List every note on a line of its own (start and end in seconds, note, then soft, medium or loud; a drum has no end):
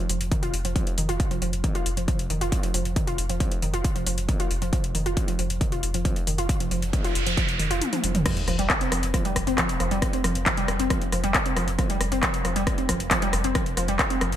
0.09 0.20 F1 loud
0.09 0.15 F3 medium
0.09 open hi-hat loud
0.21 0.31 F1 medium
0.21 closed hi-hat medium
0.32 0.39 D#3 medium
0.32 kick loud
0.32 closed hi-hat medium
0.43 0.53 F1 medium
0.43 0.46 F4 loud
0.43 closed hi-hat soft
0.54 0.64 F1 medium
0.54 open hi-hat loud
0.65 0.75 F1 medium
0.65 0.70 F3 medium
0.65 closed hi-hat medium
0.76 0.81 F3 medium
0.76 kick loud
0.76 closed hi-hat medium
0.87 closed hi-hat soft
0.98 1.08 F1 loud
0.98 1.06 D#3 medium
0.98 open hi-hat loud
1.09 1.20 F1 medium
1.09 1.12 F4 loud
1.09 closed hi-hat medium
1.20 kick loud
1.20 closed hi-hat medium
1.31 1.41 F1 medium
1.31 1.36 F3 medium
1.31 closed hi-hat soft
1.42 1.52 F1 medium
1.42 1.47 F3 medium
1.42 open hi-hat loud
1.53 1.64 F1 medium
1.53 closed hi-hat soft
1.64 1.72 D#3 medium
1.64 kick loud
1.64 closed hi-hat medium
1.75 1.78 F4 loud
1.75 closed hi-hat soft
1.86 1.97 F1 loud
1.86 open hi-hat loud
1.97 2.08 F1 medium
1.97 2.02 F3 medium
1.97 closed hi-hat medium
2.08 2.13 F3 medium
2.08 kick loud
2.08 closed hi-hat medium
2.19 2.30 F1 medium
2.19 closed hi-hat soft
2.30 2.41 F1 medium
2.30 2.38 D#3 medium
2.30 open hi-hat loud
2.41 2.52 F1 medium
2.41 2.44 F4 loud
2.41 closed hi-hat medium
2.52 kick loud
2.52 closed hi-hat medium
2.63 2.68 F3 medium
2.63 closed hi-hat soft
2.74 2.85 F1 loud
2.74 2.79 F3 medium
2.74 open hi-hat loud
2.85 2.96 F1 medium
2.85 closed hi-hat soft
2.96 3.04 D#3 medium
2.96 kick loud
2.96 closed hi-hat medium
3.07 3.18 F1 medium
3.07 3.10 F4 loud
3.07 closed hi-hat soft
3.18 3.29 F1 loud
3.18 open hi-hat loud
3.29 3.40 F1 medium
3.29 3.35 F3 medium
3.29 closed hi-hat soft
3.40 3.46 F3 medium
3.40 kick loud
3.40 closed hi-hat medium
3.52 closed hi-hat soft
3.62 3.73 F1 loud
3.62 3.70 D#3 medium
3.62 open hi-hat loud
3.74 3.84 F1 medium
3.74 3.77 F4 loud
3.74 closed hi-hat medium
3.84 kick loud
3.84 closed hi-hat medium
3.96 4.06 F1 medium
3.96 4.01 F3 medium
3.96 closed hi-hat soft
4.07 4.17 F1 loud
4.07 4.12 F3 medium
4.07 open hi-hat loud
4.18 4.28 F1 medium
4.18 closed hi-hat medium
4.29 4.37 D#3 medium
4.29 kick loud
4.29 closed hi-hat medium
4.40 4.43 F4 loud
4.40 closed hi-hat soft
4.51 4.61 F1 loud
4.51 open hi-hat loud
4.62 4.73 F1 medium
4.62 4.67 F3 medium
4.62 closed hi-hat soft
4.73 4.78 F3 medium
4.73 kick loud
4.73 closed hi-hat medium
4.84 4.94 F1 medium
4.84 closed hi-hat soft
4.95 5.05 F1 loud
4.95 5.03 D#3 medium
4.95 open hi-hat loud
5.06 5.17 F1 medium
5.06 5.09 F4 loud
5.06 closed hi-hat medium
5.17 kick loud
5.17 closed hi-hat medium
5.28 5.33 F3 medium
5.28 closed hi-hat medium
5.39 5.50 F1 loud
5.39 5.44 F3 medium
5.39 open hi-hat loud
5.50 5.61 F1 medium
5.50 closed hi-hat medium
5.61 5.69 D#3 medium
5.61 kick loud
5.61 closed hi-hat medium
5.72 5.82 F1 medium
5.72 5.75 F4 loud
5.72 closed hi-hat soft
5.83 5.94 F1 loud
5.83 open hi-hat loud
5.94 6.05 F1 medium
5.94 5.99 F3 medium
5.94 closed hi-hat medium
6.05 6.10 F3 medium
6.05 kick loud
6.05 closed hi-hat medium
6.16 closed hi-hat soft
6.27 6.38 F1 loud
6.27 6.35 D#3 medium
6.27 open hi-hat medium
6.38 6.49 F1 medium
6.38 6.41 F4 loud
6.38 closed hi-hat soft
6.49 kick loud
6.49 closed hi-hat medium
6.49 noise sweep medium
6.60 6.71 F1 medium
6.60 6.66 F3 medium
6.60 closed hi-hat medium
6.71 6.82 F1 loud
6.71 6.77 F3 medium
6.71 open hi-hat loud
6.82 6.93 F1 medium
6.82 closed hi-hat medium
6.93 7.01 D#3 medium
6.93 kick loud
6.93 closed hi-hat medium
7.04 7.08 F4 loud
7.04 closed hi-hat medium
7.15 7.26 F1 loud
7.15 open hi-hat loud
7.26 7.37 F1 medium
7.26 7.32 F3 medium
7.26 closed hi-hat medium
7.37 7.43 F3 medium
7.37 kick loud
7.37 closed hi-hat medium
7.49 7.59 F1 medium
7.49 closed hi-hat medium
7.59 7.70 F1 loud
7.59 7.67 D#3 medium
7.59 open hi-hat loud
7.71 7.81 F1 medium
7.71 7.74 F4 loud
7.71 closed hi-hat medium
7.82 closed hi-hat medium
7.82 high tom medium
7.93 7.98 F3 medium
7.93 closed hi-hat soft
7.93 high tom medium
8.04 8.14 F1 loud
8.04 8.09 F3 medium
8.04 open hi-hat loud
8.15 8.25 F1 medium
8.15 closed hi-hat medium
8.15 mid tom medium
8.26 8.31 F3 medium
8.26 kick loud
8.26 cross-stick medium
8.26 closed hi-hat medium
8.26 crash loud
8.26 sub drop medium
8.37 8.47 F1 medium
8.37 closed hi-hat medium
8.48 8.58 F1 medium
8.48 8.56 F3 medium
8.48 cross-stick medium
8.48 open hi-hat loud
8.59 8.70 F1 medium
8.59 8.67 G3 loud
8.59 closed hi-hat medium
8.70 kick loud
8.70 cross-stick medium
8.70 clap loud
8.70 closed hi-hat medium
8.81 8.89 C4 medium
8.81 closed hi-hat medium
8.92 9.02 F1 loud
8.92 8.97 F3 medium
8.92 cross-stick medium
8.92 open hi-hat medium
9.03 9.14 F1 medium
9.03 closed hi-hat medium
9.14 9.22 F3 medium
9.14 kick loud
9.14 cross-stick medium
9.14 closed hi-hat medium
9.25 9.35 F1 medium
9.25 9.33 G3 loud
9.25 closed hi-hat medium
9.36 9.47 F1 loud
9.36 kick medium
9.36 cross-stick medium
9.36 open hi-hat loud
9.47 9.58 F1 medium
9.47 9.55 C4 medium
9.47 closed hi-hat medium
9.58 9.63 F3 medium
9.58 kick loud
9.58 cross-stick medium
9.58 clap loud
9.58 closed hi-hat medium
9.69 closed hi-hat medium
9.80 9.91 F1 loud
9.80 9.88 F3 medium
9.80 cross-stick medium
9.80 open hi-hat medium
9.91 10.02 F1 medium
9.91 9.99 G3 loud
9.91 closed hi-hat medium
10.02 kick loud
10.02 cross-stick medium
10.02 closed hi-hat medium
10.13 10.24 F1 medium
10.13 10.21 C4 medium
10.13 closed hi-hat medium
10.24 10.35 F1 loud
10.24 10.29 F3 medium
10.24 cross-stick medium
10.24 open hi-hat loud
10.35 10.46 F1 medium
10.35 closed hi-hat medium
10.46 10.54 F3 medium
10.46 kick loud
10.46 cross-stick medium
10.46 clap loud
10.46 closed hi-hat medium
10.57 10.65 G3 loud
10.57 closed hi-hat medium
10.68 10.79 F1 loud
10.68 cross-stick loud
10.68 open hi-hat loud
10.79 10.90 F1 medium
10.79 10.87 C4 medium
10.79 closed hi-hat medium
10.90 10.96 F3 medium
10.90 kick loud
10.90 cross-stick medium
10.90 closed hi-hat medium
11.02 11.12 F1 medium
11.02 closed hi-hat medium
11.12 11.23 F1 medium
11.12 11.20 F3 medium
11.12 cross-stick medium
11.12 open hi-hat loud
11.24 11.34 F1 medium
11.24 11.31 G3 loud
11.24 closed hi-hat medium
11.34 kick loud
11.34 cross-stick medium
11.34 clap loud
11.34 closed hi-hat medium
11.46 11.53 C4 medium
11.46 closed hi-hat medium
11.57 11.67 F1 loud
11.57 11.62 F3 medium
11.57 cross-stick medium
11.57 open hi-hat medium
11.68 11.78 F1 medium
11.68 closed hi-hat medium
11.79 11.87 F3 medium
11.79 kick loud
11.79 cross-stick medium
11.79 closed hi-hat medium
11.90 12.00 F1 medium
11.90 11.97 G3 loud
11.90 closed hi-hat medium
12.01 12.11 F1 medium
12.01 cross-stick medium
12.01 open hi-hat loud
12.12 12.23 F1 medium
12.12 12.20 C4 medium
12.12 closed hi-hat medium
12.23 12.28 F3 medium
12.23 kick loud
12.23 cross-stick medium
12.23 clap loud
12.23 closed hi-hat medium
12.34 closed hi-hat medium
12.45 12.55 F1 loud
12.45 12.53 F3 medium
12.45 cross-stick medium
12.45 open hi-hat loud
12.56 12.67 F1 medium
12.56 12.64 G3 loud
12.56 closed hi-hat medium
12.67 kick loud
12.67 cross-stick medium
12.67 closed hi-hat medium
12.78 12.88 F1 medium
12.78 12.86 C4 medium
12.78 closed hi-hat medium
12.89 13.00 F1 loud
12.89 12.94 F3 medium
12.89 kick medium
12.89 cross-stick medium
12.89 open hi-hat loud
13.00 13.11 F1 medium
13.00 closed hi-hat medium
13.11 13.19 F3 medium
13.11 kick loud
13.11 cross-stick medium
13.11 clap loud
13.11 closed hi-hat medium
13.22 13.30 G3 loud
13.22 closed hi-hat medium
13.33 13.44 F1 loud
13.33 cross-stick medium
13.33 open hi-hat loud
13.44 13.55 F1 medium
13.44 13.52 C4 medium
13.44 closed hi-hat medium
13.55 13.60 F3 medium
13.55 kick loud
13.55 cross-stick loud
13.55 closed hi-hat medium
13.66 13.77 F1 medium
13.66 closed hi-hat medium
13.77 13.88 F1 medium
13.77 13.85 F3 medium
13.77 cross-stick medium
13.77 open hi-hat loud
13.88 13.99 F1 medium
13.88 13.96 G3 loud
13.88 closed hi-hat medium
13.99 kick loud
13.99 cross-stick medium
13.99 clap loud
13.99 closed hi-hat medium
14.10 14.18 C4 medium
14.10 closed hi-hat medium
14.21 14.32 F1 loud
14.21 14.27 F3 medium
14.21 cross-stick loud
14.21 open hi-hat loud
14.32 14.36 F1 medium
14.32 closed hi-hat medium